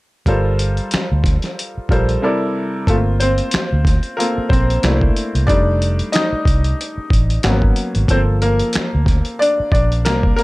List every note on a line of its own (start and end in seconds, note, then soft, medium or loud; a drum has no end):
0.26 0.78 G1 medium
0.26 1.29 G3 medium
0.26 1.29 F4 medium
0.26 1.30 A4 medium
0.26 1.30 A#4 medium
0.26 1.30 C5 medium
0.26 kick medium
0.26 closed hi-hat medium
0.59 closed hi-hat medium
0.77 closed hi-hat soft
0.91 finger snap medium
0.91 muted fingered electric bass stroke soft
0.91 snare loud
0.91 closed hi-hat medium
1.12 1.37 D2 medium
1.24 kick medium
1.24 snare soft
1.24 closed hi-hat medium
1.42 snare soft
1.42 closed hi-hat soft
1.59 closed hi-hat medium
1.78 muted fingered electric bass stroke soft
1.89 2.16 A#1 medium
1.89 2.21 G3 medium
1.89 2.23 F4 medium
1.89 2.22 A4 medium
1.89 2.22 A#4 medium
1.89 2.23 C5 medium
1.89 kick medium
1.89 closed hi-hat soft
2.09 closed hi-hat soft
2.22 2.76 C3 medium
2.22 2.76 G3 medium
2.22 2.77 E4 medium
2.22 2.77 A4 medium
2.22 2.77 A#4 medium
2.22 2.77 D5 medium
2.87 3.39 G1 medium
2.87 2.97 A3 medium
2.87 3.82 A#3 soft
2.87 3.20 C4 soft
2.87 3.82 F4 medium
2.87 2.95 A4 medium
2.87 kick medium
2.87 closed hi-hat medium
3.20 4.15 C4 medium
3.20 4.14 C5 medium
3.20 closed hi-hat medium
3.38 closed hi-hat soft
3.51 finger snap medium
3.51 muted fingered electric bass stroke soft
3.51 snare loud
3.51 closed hi-hat medium
3.73 3.98 D2 medium
3.85 kick medium
3.85 snare soft
3.85 closed hi-hat medium
4.03 closed hi-hat soft
4.17 4.49 A#3 medium
4.17 4.47 C4 soft
4.17 4.48 F4 soft
4.17 4.47 A4 soft
4.17 4.51 A#4 medium
4.17 closed hi-hat medium
4.38 muted fingered electric bass stroke soft
4.49 4.76 A#1 medium
4.49 5.45 C4 medium
4.49 5.44 C5 medium
4.49 kick medium
4.49 closed hi-hat medium
4.70 closed hi-hat soft
4.83 5.09 C2 loud
4.83 5.28 A3 soft
4.83 5.28 A#3 soft
4.83 5.28 D4 soft
4.83 5.28 E4 medium
4.83 finger snap medium
4.83 snare loud
4.83 closed hi-hat medium
5.01 kick medium
5.16 closed hi-hat medium
5.35 5.46 C2 medium
5.35 closed hi-hat soft
5.47 6.42 G3 medium
5.47 6.42 A3 soft
5.47 6.10 D4 medium
5.47 6.12 D#4 medium
5.47 6.09 D5 loud
5.47 kick loud
5.47 closed hi-hat medium
5.82 closed hi-hat medium
5.99 closed hi-hat soft
6.12 6.75 D#4 medium
6.12 6.74 D#5 medium
6.12 finger snap medium
6.12 snare loud
6.12 closed hi-hat medium
6.32 muted fingered electric bass stroke soft
6.45 6.72 C2 medium
6.45 kick medium
6.45 closed hi-hat medium
6.64 closed hi-hat soft
6.81 closed hi-hat medium
6.98 muted fingered electric bass stroke soft
7.10 7.37 A1 medium
7.10 kick medium
7.10 closed hi-hat medium
7.30 closed hi-hat soft
7.43 7.70 G#1 loud
7.43 8.06 F#3 medium
7.43 8.06 A#3 medium
7.43 8.06 B3 medium
7.43 8.06 C#4 medium
7.43 finger snap medium
7.43 snare loud
7.43 closed hi-hat medium
7.62 kick medium
7.76 closed hi-hat medium
7.95 8.07 G#1 medium
7.95 closed hi-hat soft
8.08 8.60 G1 loud
8.08 9.03 F3 medium
8.08 8.41 A#3 soft
8.08 8.19 C4 medium
8.08 9.04 A4 medium
8.08 8.18 C5 medium
8.08 kick medium
8.08 closed hi-hat medium
8.42 9.36 A#3 medium
8.42 9.43 A#4 medium
8.42 closed hi-hat medium
8.59 closed hi-hat soft
8.73 finger snap medium
8.73 muted fingered electric bass stroke soft
8.73 snare loud
8.73 closed hi-hat medium
8.95 9.20 D2 medium
9.06 kick medium
9.06 snare soft
9.06 closed hi-hat medium
9.25 closed hi-hat soft
9.39 9.48 D4 medium
9.39 9.47 D5 loud
9.39 closed hi-hat medium
9.60 muted fingered electric bass stroke soft
9.72 10.07 A#1 medium
9.72 10.04 D4 medium
9.72 10.06 D5 medium
9.72 kick medium
9.72 closed hi-hat medium
9.92 closed hi-hat soft
10.05 10.32 C2 medium
10.05 10.36 A#3 medium
10.05 10.35 A#4 medium
10.05 finger snap medium
10.05 snare medium
10.05 closed hi-hat medium
10.23 kick medium
10.36 10.43 A#3 medium
10.36 10.43 A#4 medium
10.36 closed hi-hat medium